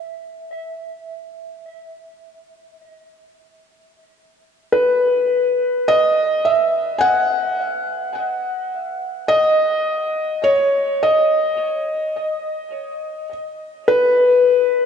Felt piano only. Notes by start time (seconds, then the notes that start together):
4.72 B4
5.88 D#5
6.45 E5
6.98 F#5 G#5
9.28 D#5
10.44 C#5
11.03 D#5
13.88 B4